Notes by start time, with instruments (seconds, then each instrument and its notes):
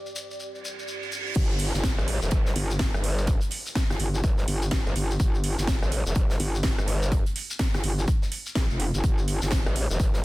Already playing: analog synth pad G3 E4 C5, ambient pad G4 D5
0.06 shekere
0.16 shekere
0.31 shekere
0.40 reverse cymbal, shekere
0.55 shekere
0.65 shekere
0.79 shekere
0.88 shekere
1.03 shekere
1.12 shekere
1.26 shekere
1.35 wobble bass G1, kick, closed hi-hat, crash, downlifter, shekere
1.50 shekere
1.59 closed hi-hat, open hi-hat
1.74 wobble bass G1, snare, shekere
1.83 kick, snare, closed hi-hat, shekere
1.98 wobble bass A1, cross-stick, shekere
2.08 closed hi-hat, open hi-hat
2.22 wobble bass F1, shekere
2.31 wobble bass G1, kick, closed hi-hat, shekere
2.46 snare, shekere
2.56 wobble bass G1, closed hi-hat, open hi-hat
2.70 shekere
2.79 kick, snare, closed hi-hat, shekere
2.94 wobble bass G1, cross-stick, shekere
3.04 closed hi-hat, open hi-hat
3.18 shekere
3.27 kick, closed hi-hat, shekere
3.41 closed hi-hat, shekere
3.51 closed hi-hat, open hi-hat
3.66 shekere
3.75 kick, snare, closed hi-hat, shekere
3.90 wobble bass G1, cross-stick, snare, shekere
3.99 wobble bass G1, closed hi-hat, open hi-hat
4.14 shekere
4.24 wobble bass G1, kick, closed hi-hat, shekere
4.38 snare, shekere
4.48 wobble bass G1, closed hi-hat, open hi-hat
4.62 shekere
4.71 kick, snare, closed hi-hat, shekere
4.86 wobble bass G1, shekere
4.96 wobble bass G1, closed hi-hat, open hi-hat
5.11 shekere
5.19 wobble bass G1, kick, closed hi-hat, shekere
5.34 shekere
5.44 closed hi-hat, open hi-hat
5.58 wobble bass G1, snare, shekere
5.67 kick, snare, closed hi-hat, shekere
5.82 wobble bass A1, cross-stick, shekere
5.92 closed hi-hat, open hi-hat
6.06 wobble bass F1, shekere
6.15 wobble bass G1, kick, closed hi-hat, shekere
6.30 snare, shekere
6.40 wobble bass G1, closed hi-hat, open hi-hat
6.55 shekere
6.63 kick, snare, closed hi-hat, shekere
6.78 wobble bass G1, cross-stick, shekere
6.88 closed hi-hat, open hi-hat
7.02 shekere
7.12 kick, closed hi-hat, shekere
7.26 closed hi-hat, shekere
7.36 closed hi-hat, open hi-hat
7.50 shekere
7.59 kick, snare, closed hi-hat
7.74 wobble bass G1, cross-stick, snare, shekere
7.83 wobble bass G1, closed hi-hat, open hi-hat
7.99 shekere
8.08 kick, closed hi-hat, shekere
8.22 snare, shekere
8.32 closed hi-hat, open hi-hat
8.46 shekere
8.55 wobble bass A#1, kick, snare, closed hi-hat, shekere
8.70 wobble bass F1, shekere
8.80 closed hi-hat, open hi-hat
8.94 wobble bass G1, shekere
9.04 wobble bass G1, kick, closed hi-hat, shekere
9.18 shekere
9.28 closed hi-hat, open hi-hat
9.42 wobble bass G1, snare, shekere
9.51 kick, snare, closed hi-hat, shekere
9.66 wobble bass A1, cross-stick, shekere
9.76 closed hi-hat, open hi-hat
9.90 wobble bass F1, shekere
9.99 wobble bass G1, kick, closed hi-hat, shekere
10.14 snare, shekere